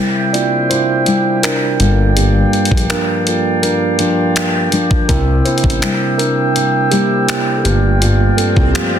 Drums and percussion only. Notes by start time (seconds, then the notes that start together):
0.34 closed hi-hat
0.71 closed hi-hat
1.06 closed hi-hat
1.43 finger snap, closed hi-hat
1.80 closed hi-hat
2.17 closed hi-hat
2.53 closed hi-hat
2.65 closed hi-hat
2.71 kick
2.77 closed hi-hat
2.90 finger snap, closed hi-hat
3.27 closed hi-hat
3.63 closed hi-hat
3.99 closed hi-hat
4.36 finger snap, closed hi-hat
4.72 closed hi-hat
4.91 kick
5.09 kick, closed hi-hat
5.46 closed hi-hat
5.58 closed hi-hat
5.64 kick
5.70 closed hi-hat
5.82 finger snap, closed hi-hat
6.19 closed hi-hat
6.56 closed hi-hat
6.92 closed hi-hat
7.29 finger snap, closed hi-hat
7.65 closed hi-hat
8.02 closed hi-hat
8.38 closed hi-hat
8.56 kick
8.75 finger snap, closed hi-hat